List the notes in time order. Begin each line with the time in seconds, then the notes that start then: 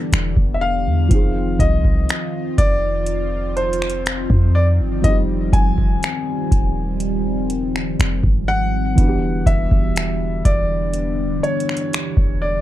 Already playing: D3 E3 G3 B3 D4 G4 G5
0.13 E1, finger snap, closed hi-hat
0.36 E1, kick
0.54 E5
0.61 F5
0.86 E2
1.08 F1 D#3 F3 C4 F4, kick, closed hi-hat
1.12 D#4 G#4
1.59 C2 D#5, kick, closed hi-hat
1.84 kick
2.09 finger snap, closed hi-hat
2.58 F1 D5, kick, closed hi-hat
3.06 closed hi-hat
3.57 C5, closed hi-hat
3.73 closed hi-hat
3.82 finger snap
3.90 closed hi-hat
4.06 finger snap, closed hi-hat
4.30 F2, kick
4.55 D5
4.80 G1
5.02 F1 F3 G3 C4 D#5, kick, closed hi-hat
5.06 G3 D#4
5.53 F1 G#5, kick, closed hi-hat
5.78 kick
6.03 finger snap, closed hi-hat
6.52 D#1, kick, closed hi-hat
7.00 closed hi-hat
7.50 closed hi-hat
7.76 finger snap
7.99 F1, finger snap, closed hi-hat
8.23 G#1, kick
8.48 F#5
8.95 E1 D3 E3 G3 B3 D4, kick, closed hi-hat
8.99 D4 F#4
9.08 G4
9.46 E1 E5, kick, closed hi-hat
9.71 E1, kick
9.96 finger snap, closed hi-hat
10.45 E1 D5, kick, closed hi-hat
10.93 closed hi-hat
11.43 C#5, closed hi-hat
11.60 closed hi-hat
11.69 finger snap
11.77 closed hi-hat
11.93 finger snap, closed hi-hat
12.17 E1, kick
12.42 D5